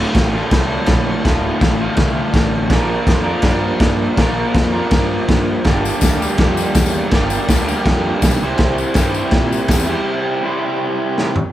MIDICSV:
0, 0, Header, 1, 4, 480
1, 0, Start_track
1, 0, Tempo, 367197
1, 1647, Time_signature, 4, 2, 24, 8
1, 15063, End_track
2, 0, Start_track
2, 0, Title_t, "Overdriven electric guitar"
2, 0, Program_c, 0, 29
2, 0, Note_on_c, 0, 38, 81
2, 0, Note_on_c, 0, 45, 81
2, 0, Note_on_c, 0, 50, 96
2, 0, Note_on_c, 0, 57, 93
2, 0, Note_on_c, 0, 65, 98
2, 428, Note_off_c, 0, 45, 0
2, 432, Note_off_c, 0, 65, 0
2, 438, Note_on_c, 0, 65, 86
2, 446, Note_off_c, 0, 57, 0
2, 451, Note_on_c, 0, 57, 89
2, 466, Note_off_c, 0, 50, 0
2, 471, Note_on_c, 0, 50, 78
2, 478, Note_off_c, 0, 38, 0
2, 480, Note_on_c, 0, 45, 77
2, 483, Note_on_c, 0, 38, 72
2, 1621, Note_off_c, 0, 38, 0
2, 1634, Note_off_c, 0, 57, 0
2, 1636, Note_off_c, 0, 45, 0
2, 1636, Note_on_c, 0, 38, 101
2, 1644, Note_off_c, 0, 50, 0
2, 1652, Note_on_c, 0, 45, 106
2, 1659, Note_on_c, 0, 50, 91
2, 1663, Note_on_c, 0, 57, 98
2, 1669, Note_off_c, 0, 65, 0
2, 1674, Note_on_c, 0, 65, 96
2, 2345, Note_off_c, 0, 38, 0
2, 2353, Note_off_c, 0, 45, 0
2, 2356, Note_off_c, 0, 65, 0
2, 2357, Note_off_c, 0, 50, 0
2, 2359, Note_off_c, 0, 57, 0
2, 2361, Note_on_c, 0, 65, 88
2, 2379, Note_on_c, 0, 57, 86
2, 2384, Note_on_c, 0, 50, 80
2, 2402, Note_on_c, 0, 45, 80
2, 2411, Note_on_c, 0, 38, 77
2, 3514, Note_off_c, 0, 38, 0
2, 3519, Note_on_c, 0, 46, 106
2, 3533, Note_off_c, 0, 45, 0
2, 3539, Note_on_c, 0, 53, 99
2, 3552, Note_off_c, 0, 57, 0
2, 3555, Note_off_c, 0, 50, 0
2, 3557, Note_on_c, 0, 62, 99
2, 3560, Note_on_c, 0, 58, 91
2, 3568, Note_off_c, 0, 65, 0
2, 3568, Note_on_c, 0, 65, 87
2, 3574, Note_on_c, 0, 70, 98
2, 4226, Note_off_c, 0, 70, 0
2, 4231, Note_on_c, 0, 70, 89
2, 4232, Note_off_c, 0, 65, 0
2, 4237, Note_on_c, 0, 65, 82
2, 4241, Note_off_c, 0, 58, 0
2, 4246, Note_off_c, 0, 62, 0
2, 4247, Note_on_c, 0, 58, 81
2, 4251, Note_on_c, 0, 62, 81
2, 4254, Note_off_c, 0, 53, 0
2, 4259, Note_on_c, 0, 53, 73
2, 4261, Note_off_c, 0, 46, 0
2, 4266, Note_on_c, 0, 46, 79
2, 5427, Note_off_c, 0, 46, 0
2, 5438, Note_off_c, 0, 65, 0
2, 5443, Note_on_c, 0, 46, 102
2, 5444, Note_off_c, 0, 53, 0
2, 5453, Note_off_c, 0, 58, 0
2, 5458, Note_on_c, 0, 58, 89
2, 5460, Note_on_c, 0, 53, 91
2, 5462, Note_off_c, 0, 62, 0
2, 5467, Note_on_c, 0, 62, 94
2, 5479, Note_off_c, 0, 70, 0
2, 5481, Note_on_c, 0, 65, 97
2, 5484, Note_on_c, 0, 70, 106
2, 6161, Note_off_c, 0, 46, 0
2, 6169, Note_off_c, 0, 53, 0
2, 6169, Note_off_c, 0, 70, 0
2, 6170, Note_off_c, 0, 65, 0
2, 6174, Note_on_c, 0, 70, 92
2, 6185, Note_on_c, 0, 65, 79
2, 6199, Note_off_c, 0, 62, 0
2, 6204, Note_on_c, 0, 62, 77
2, 6207, Note_off_c, 0, 58, 0
2, 6212, Note_on_c, 0, 58, 65
2, 6219, Note_on_c, 0, 53, 77
2, 6224, Note_on_c, 0, 46, 69
2, 7370, Note_off_c, 0, 65, 0
2, 7377, Note_off_c, 0, 46, 0
2, 7382, Note_on_c, 0, 43, 95
2, 7387, Note_off_c, 0, 53, 0
2, 7398, Note_on_c, 0, 50, 84
2, 7402, Note_off_c, 0, 62, 0
2, 7408, Note_off_c, 0, 58, 0
2, 7408, Note_on_c, 0, 58, 91
2, 7414, Note_on_c, 0, 55, 89
2, 7422, Note_on_c, 0, 62, 93
2, 7428, Note_off_c, 0, 70, 0
2, 7433, Note_on_c, 0, 67, 91
2, 8094, Note_off_c, 0, 67, 0
2, 8097, Note_off_c, 0, 50, 0
2, 8100, Note_off_c, 0, 58, 0
2, 8100, Note_off_c, 0, 62, 0
2, 8100, Note_on_c, 0, 67, 89
2, 8105, Note_on_c, 0, 58, 78
2, 8105, Note_on_c, 0, 62, 80
2, 8114, Note_off_c, 0, 55, 0
2, 8119, Note_on_c, 0, 55, 82
2, 8134, Note_off_c, 0, 43, 0
2, 8134, Note_on_c, 0, 50, 71
2, 8139, Note_on_c, 0, 43, 72
2, 9269, Note_off_c, 0, 43, 0
2, 9279, Note_off_c, 0, 50, 0
2, 9285, Note_on_c, 0, 43, 85
2, 9290, Note_off_c, 0, 58, 0
2, 9290, Note_off_c, 0, 62, 0
2, 9295, Note_on_c, 0, 50, 104
2, 9305, Note_off_c, 0, 55, 0
2, 9310, Note_on_c, 0, 55, 91
2, 9326, Note_on_c, 0, 58, 97
2, 9326, Note_on_c, 0, 62, 103
2, 9334, Note_off_c, 0, 67, 0
2, 9339, Note_on_c, 0, 67, 109
2, 10000, Note_off_c, 0, 62, 0
2, 10001, Note_off_c, 0, 43, 0
2, 10006, Note_off_c, 0, 50, 0
2, 10008, Note_off_c, 0, 67, 0
2, 10013, Note_on_c, 0, 67, 96
2, 10016, Note_off_c, 0, 58, 0
2, 10016, Note_on_c, 0, 62, 76
2, 10032, Note_on_c, 0, 58, 83
2, 10039, Note_off_c, 0, 55, 0
2, 10044, Note_on_c, 0, 55, 82
2, 10056, Note_on_c, 0, 50, 82
2, 10058, Note_on_c, 0, 43, 78
2, 10968, Note_off_c, 0, 62, 0
2, 10976, Note_off_c, 0, 58, 0
2, 10988, Note_off_c, 0, 50, 0
2, 10989, Note_off_c, 0, 43, 0
2, 11002, Note_on_c, 0, 48, 97
2, 11006, Note_off_c, 0, 55, 0
2, 11006, Note_on_c, 0, 55, 80
2, 11014, Note_on_c, 0, 60, 113
2, 11028, Note_on_c, 0, 64, 99
2, 11033, Note_off_c, 0, 67, 0
2, 11035, Note_on_c, 0, 67, 102
2, 11038, Note_on_c, 0, 72, 106
2, 11697, Note_off_c, 0, 48, 0
2, 11699, Note_off_c, 0, 55, 0
2, 11702, Note_on_c, 0, 48, 91
2, 11704, Note_on_c, 0, 55, 84
2, 11714, Note_off_c, 0, 60, 0
2, 11719, Note_on_c, 0, 60, 87
2, 11722, Note_off_c, 0, 67, 0
2, 11723, Note_off_c, 0, 64, 0
2, 11728, Note_on_c, 0, 64, 84
2, 11728, Note_on_c, 0, 67, 95
2, 11741, Note_off_c, 0, 72, 0
2, 11747, Note_on_c, 0, 72, 88
2, 12888, Note_off_c, 0, 48, 0
2, 12891, Note_off_c, 0, 55, 0
2, 12896, Note_off_c, 0, 60, 0
2, 12903, Note_on_c, 0, 48, 99
2, 12907, Note_on_c, 0, 55, 96
2, 12910, Note_off_c, 0, 64, 0
2, 12910, Note_off_c, 0, 67, 0
2, 12911, Note_on_c, 0, 60, 95
2, 12919, Note_off_c, 0, 72, 0
2, 12925, Note_on_c, 0, 64, 84
2, 12937, Note_on_c, 0, 67, 117
2, 12940, Note_on_c, 0, 72, 111
2, 13611, Note_off_c, 0, 48, 0
2, 13620, Note_off_c, 0, 55, 0
2, 13622, Note_off_c, 0, 60, 0
2, 13627, Note_on_c, 0, 48, 84
2, 13629, Note_off_c, 0, 64, 0
2, 13635, Note_off_c, 0, 67, 0
2, 13636, Note_off_c, 0, 72, 0
2, 13642, Note_on_c, 0, 55, 74
2, 13654, Note_on_c, 0, 60, 84
2, 13659, Note_on_c, 0, 64, 90
2, 13661, Note_on_c, 0, 67, 92
2, 13677, Note_on_c, 0, 72, 99
2, 14824, Note_off_c, 0, 48, 0
2, 14832, Note_off_c, 0, 55, 0
2, 14838, Note_off_c, 0, 60, 0
2, 14840, Note_off_c, 0, 64, 0
2, 14841, Note_off_c, 0, 67, 0
2, 14849, Note_off_c, 0, 72, 0
2, 15063, End_track
3, 0, Start_track
3, 0, Title_t, "Fingered electric bass"
3, 0, Program_c, 1, 33
3, 196, Note_on_c, 1, 33, 102
3, 523, Note_off_c, 1, 33, 0
3, 684, Note_on_c, 1, 36, 109
3, 1008, Note_off_c, 1, 36, 0
3, 1147, Note_on_c, 1, 34, 104
3, 1476, Note_off_c, 1, 34, 0
3, 1636, Note_on_c, 1, 26, 99
3, 1962, Note_off_c, 1, 26, 0
3, 2120, Note_on_c, 1, 33, 103
3, 2443, Note_off_c, 1, 33, 0
3, 2578, Note_on_c, 1, 36, 106
3, 2909, Note_off_c, 1, 36, 0
3, 3056, Note_on_c, 1, 33, 98
3, 3533, Note_off_c, 1, 33, 0
3, 3533, Note_on_c, 1, 34, 95
3, 3864, Note_off_c, 1, 34, 0
3, 4004, Note_on_c, 1, 41, 84
3, 4337, Note_off_c, 1, 41, 0
3, 4494, Note_on_c, 1, 43, 97
3, 4823, Note_off_c, 1, 43, 0
3, 4976, Note_on_c, 1, 43, 99
3, 5304, Note_off_c, 1, 43, 0
3, 5458, Note_on_c, 1, 34, 95
3, 5785, Note_off_c, 1, 34, 0
3, 5945, Note_on_c, 1, 41, 100
3, 6268, Note_off_c, 1, 41, 0
3, 6431, Note_on_c, 1, 43, 95
3, 6752, Note_off_c, 1, 43, 0
3, 6911, Note_on_c, 1, 43, 104
3, 7232, Note_off_c, 1, 43, 0
3, 7384, Note_on_c, 1, 31, 109
3, 7707, Note_off_c, 1, 31, 0
3, 7866, Note_on_c, 1, 38, 94
3, 8188, Note_off_c, 1, 38, 0
3, 8349, Note_on_c, 1, 41, 110
3, 8670, Note_off_c, 1, 41, 0
3, 8820, Note_on_c, 1, 40, 99
3, 9144, Note_off_c, 1, 40, 0
3, 9309, Note_on_c, 1, 31, 100
3, 9630, Note_off_c, 1, 31, 0
3, 9786, Note_on_c, 1, 38, 105
3, 10109, Note_off_c, 1, 38, 0
3, 10270, Note_on_c, 1, 41, 109
3, 10592, Note_off_c, 1, 41, 0
3, 10746, Note_on_c, 1, 35, 106
3, 10908, Note_off_c, 1, 35, 0
3, 10996, Note_on_c, 1, 36, 83
3, 11155, Note_off_c, 1, 36, 0
3, 11230, Note_on_c, 1, 36, 101
3, 11553, Note_off_c, 1, 36, 0
3, 11708, Note_on_c, 1, 43, 101
3, 12032, Note_off_c, 1, 43, 0
3, 12189, Note_on_c, 1, 46, 98
3, 12514, Note_off_c, 1, 46, 0
3, 12669, Note_on_c, 1, 40, 97
3, 12995, Note_off_c, 1, 40, 0
3, 15063, End_track
4, 0, Start_track
4, 0, Title_t, "Drums"
4, 194, Note_on_c, 9, 36, 116
4, 195, Note_on_c, 9, 49, 66
4, 211, Note_on_c, 9, 38, 120
4, 325, Note_off_c, 9, 36, 0
4, 326, Note_off_c, 9, 49, 0
4, 342, Note_off_c, 9, 38, 0
4, 668, Note_on_c, 9, 49, 72
4, 673, Note_on_c, 9, 36, 111
4, 683, Note_on_c, 9, 38, 119
4, 798, Note_off_c, 9, 49, 0
4, 804, Note_off_c, 9, 36, 0
4, 814, Note_off_c, 9, 38, 0
4, 1127, Note_on_c, 9, 49, 74
4, 1143, Note_on_c, 9, 38, 120
4, 1150, Note_on_c, 9, 36, 119
4, 1258, Note_off_c, 9, 49, 0
4, 1273, Note_off_c, 9, 38, 0
4, 1281, Note_off_c, 9, 36, 0
4, 1635, Note_on_c, 9, 36, 109
4, 1635, Note_on_c, 9, 49, 58
4, 1651, Note_on_c, 9, 38, 111
4, 1765, Note_off_c, 9, 36, 0
4, 1766, Note_off_c, 9, 49, 0
4, 1782, Note_off_c, 9, 38, 0
4, 2108, Note_on_c, 9, 49, 67
4, 2109, Note_on_c, 9, 36, 121
4, 2124, Note_on_c, 9, 38, 114
4, 2239, Note_off_c, 9, 36, 0
4, 2239, Note_off_c, 9, 49, 0
4, 2254, Note_off_c, 9, 38, 0
4, 2569, Note_on_c, 9, 49, 64
4, 2580, Note_on_c, 9, 36, 121
4, 2585, Note_on_c, 9, 38, 119
4, 2700, Note_off_c, 9, 49, 0
4, 2711, Note_off_c, 9, 36, 0
4, 2716, Note_off_c, 9, 38, 0
4, 3055, Note_on_c, 9, 36, 121
4, 3058, Note_on_c, 9, 49, 67
4, 3074, Note_on_c, 9, 38, 118
4, 3186, Note_off_c, 9, 36, 0
4, 3189, Note_off_c, 9, 49, 0
4, 3204, Note_off_c, 9, 38, 0
4, 3529, Note_on_c, 9, 36, 103
4, 3529, Note_on_c, 9, 49, 68
4, 3545, Note_on_c, 9, 38, 106
4, 3660, Note_off_c, 9, 36, 0
4, 3660, Note_off_c, 9, 49, 0
4, 3675, Note_off_c, 9, 38, 0
4, 4012, Note_on_c, 9, 36, 121
4, 4018, Note_on_c, 9, 49, 64
4, 4033, Note_on_c, 9, 38, 111
4, 4142, Note_off_c, 9, 36, 0
4, 4148, Note_off_c, 9, 49, 0
4, 4164, Note_off_c, 9, 38, 0
4, 4469, Note_on_c, 9, 49, 70
4, 4482, Note_on_c, 9, 36, 106
4, 4485, Note_on_c, 9, 38, 116
4, 4600, Note_off_c, 9, 49, 0
4, 4613, Note_off_c, 9, 36, 0
4, 4615, Note_off_c, 9, 38, 0
4, 4964, Note_on_c, 9, 49, 70
4, 4969, Note_on_c, 9, 36, 107
4, 4980, Note_on_c, 9, 38, 118
4, 5095, Note_off_c, 9, 49, 0
4, 5100, Note_off_c, 9, 36, 0
4, 5111, Note_off_c, 9, 38, 0
4, 5454, Note_on_c, 9, 49, 67
4, 5457, Note_on_c, 9, 36, 100
4, 5470, Note_on_c, 9, 38, 115
4, 5585, Note_off_c, 9, 49, 0
4, 5587, Note_off_c, 9, 36, 0
4, 5601, Note_off_c, 9, 38, 0
4, 5942, Note_on_c, 9, 36, 120
4, 5951, Note_on_c, 9, 49, 73
4, 5967, Note_on_c, 9, 38, 121
4, 6073, Note_off_c, 9, 36, 0
4, 6082, Note_off_c, 9, 49, 0
4, 6098, Note_off_c, 9, 38, 0
4, 6415, Note_on_c, 9, 49, 68
4, 6425, Note_on_c, 9, 36, 123
4, 6431, Note_on_c, 9, 38, 112
4, 6546, Note_off_c, 9, 49, 0
4, 6556, Note_off_c, 9, 36, 0
4, 6561, Note_off_c, 9, 38, 0
4, 6909, Note_on_c, 9, 49, 63
4, 6910, Note_on_c, 9, 36, 121
4, 6925, Note_on_c, 9, 38, 114
4, 7040, Note_off_c, 9, 49, 0
4, 7041, Note_off_c, 9, 36, 0
4, 7056, Note_off_c, 9, 38, 0
4, 7377, Note_on_c, 9, 49, 56
4, 7388, Note_on_c, 9, 36, 105
4, 7393, Note_on_c, 9, 38, 99
4, 7414, Note_on_c, 9, 54, 28
4, 7508, Note_off_c, 9, 49, 0
4, 7519, Note_off_c, 9, 36, 0
4, 7524, Note_off_c, 9, 38, 0
4, 7545, Note_off_c, 9, 54, 0
4, 7652, Note_on_c, 9, 54, 90
4, 7782, Note_off_c, 9, 54, 0
4, 7858, Note_on_c, 9, 54, 112
4, 7867, Note_on_c, 9, 36, 125
4, 7872, Note_on_c, 9, 49, 64
4, 7888, Note_on_c, 9, 38, 121
4, 7989, Note_off_c, 9, 54, 0
4, 7998, Note_off_c, 9, 36, 0
4, 8003, Note_off_c, 9, 49, 0
4, 8019, Note_off_c, 9, 38, 0
4, 8133, Note_on_c, 9, 54, 88
4, 8263, Note_off_c, 9, 54, 0
4, 8337, Note_on_c, 9, 49, 72
4, 8346, Note_on_c, 9, 36, 125
4, 8353, Note_on_c, 9, 38, 106
4, 8468, Note_off_c, 9, 49, 0
4, 8477, Note_off_c, 9, 36, 0
4, 8483, Note_off_c, 9, 38, 0
4, 8592, Note_on_c, 9, 54, 90
4, 8722, Note_off_c, 9, 54, 0
4, 8816, Note_on_c, 9, 49, 68
4, 8825, Note_on_c, 9, 36, 127
4, 8825, Note_on_c, 9, 54, 101
4, 8832, Note_on_c, 9, 38, 118
4, 8947, Note_off_c, 9, 49, 0
4, 8956, Note_off_c, 9, 36, 0
4, 8956, Note_off_c, 9, 54, 0
4, 8962, Note_off_c, 9, 38, 0
4, 8964, Note_on_c, 9, 54, 86
4, 9095, Note_off_c, 9, 54, 0
4, 9297, Note_on_c, 9, 49, 67
4, 9306, Note_on_c, 9, 36, 108
4, 9313, Note_on_c, 9, 38, 107
4, 9322, Note_on_c, 9, 54, 29
4, 9428, Note_off_c, 9, 49, 0
4, 9437, Note_off_c, 9, 36, 0
4, 9444, Note_off_c, 9, 38, 0
4, 9452, Note_off_c, 9, 54, 0
4, 9545, Note_on_c, 9, 54, 87
4, 9675, Note_off_c, 9, 54, 0
4, 9782, Note_on_c, 9, 49, 69
4, 9787, Note_on_c, 9, 36, 112
4, 9798, Note_on_c, 9, 38, 119
4, 9804, Note_on_c, 9, 54, 94
4, 9913, Note_off_c, 9, 49, 0
4, 9918, Note_off_c, 9, 36, 0
4, 9928, Note_off_c, 9, 38, 0
4, 9935, Note_off_c, 9, 54, 0
4, 10045, Note_on_c, 9, 54, 77
4, 10175, Note_off_c, 9, 54, 0
4, 10268, Note_on_c, 9, 49, 63
4, 10269, Note_on_c, 9, 36, 113
4, 10284, Note_on_c, 9, 38, 113
4, 10399, Note_off_c, 9, 49, 0
4, 10400, Note_off_c, 9, 36, 0
4, 10414, Note_off_c, 9, 38, 0
4, 10745, Note_on_c, 9, 54, 93
4, 10747, Note_on_c, 9, 49, 68
4, 10749, Note_on_c, 9, 36, 126
4, 10762, Note_on_c, 9, 38, 127
4, 10866, Note_off_c, 9, 54, 0
4, 10866, Note_on_c, 9, 54, 75
4, 10877, Note_off_c, 9, 49, 0
4, 10880, Note_off_c, 9, 36, 0
4, 10893, Note_off_c, 9, 38, 0
4, 10996, Note_off_c, 9, 54, 0
4, 11210, Note_on_c, 9, 49, 58
4, 11226, Note_on_c, 9, 38, 112
4, 11227, Note_on_c, 9, 36, 117
4, 11240, Note_on_c, 9, 54, 24
4, 11341, Note_off_c, 9, 49, 0
4, 11356, Note_off_c, 9, 38, 0
4, 11357, Note_off_c, 9, 36, 0
4, 11371, Note_off_c, 9, 54, 0
4, 11479, Note_on_c, 9, 54, 83
4, 11610, Note_off_c, 9, 54, 0
4, 11686, Note_on_c, 9, 49, 65
4, 11701, Note_on_c, 9, 38, 124
4, 11704, Note_on_c, 9, 36, 113
4, 11715, Note_on_c, 9, 54, 84
4, 11816, Note_off_c, 9, 49, 0
4, 11832, Note_off_c, 9, 38, 0
4, 11835, Note_off_c, 9, 36, 0
4, 11845, Note_off_c, 9, 54, 0
4, 11953, Note_on_c, 9, 54, 69
4, 12084, Note_off_c, 9, 54, 0
4, 12170, Note_on_c, 9, 49, 62
4, 12183, Note_on_c, 9, 36, 120
4, 12186, Note_on_c, 9, 38, 111
4, 12301, Note_off_c, 9, 49, 0
4, 12313, Note_off_c, 9, 36, 0
4, 12317, Note_off_c, 9, 38, 0
4, 12451, Note_on_c, 9, 54, 78
4, 12581, Note_off_c, 9, 54, 0
4, 12655, Note_on_c, 9, 49, 73
4, 12664, Note_on_c, 9, 36, 109
4, 12671, Note_on_c, 9, 38, 121
4, 12696, Note_on_c, 9, 54, 107
4, 12786, Note_off_c, 9, 49, 0
4, 12794, Note_off_c, 9, 36, 0
4, 12802, Note_off_c, 9, 38, 0
4, 12804, Note_off_c, 9, 54, 0
4, 12804, Note_on_c, 9, 54, 93
4, 12934, Note_off_c, 9, 54, 0
4, 14614, Note_on_c, 9, 38, 71
4, 14745, Note_off_c, 9, 38, 0
4, 14846, Note_on_c, 9, 43, 83
4, 14976, Note_off_c, 9, 43, 0
4, 15063, End_track
0, 0, End_of_file